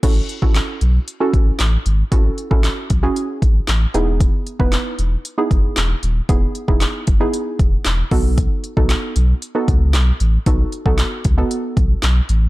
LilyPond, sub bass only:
\new Staff \with { instrumentName = "Sub bass" } { \clef bass \time 4/4 \key a \lydian \tempo 4 = 115 a,,8 r16 a,,8 r16 b,,8 r8 a,,8 a,,8 gis,,8 | a,,8 r16 a,,8 r16 b,,8 r8 a,,8 a,,8 e,,8~ | e,,8 r16 e,,8 r16 e,,8 r8 fis,,8 e,,8 dis,,8 | e,,8 r16 e,,8 r16 fis,,8 r8 e,,8 e,,8 b,,8~ |
b,,8 r16 b,,8 r16 b,,8 r8 cis,8 b,,8 a,,8 | b,,8 r16 b,,8 r16 cis,8 r8 b,,8 b,,8 a,,8 | }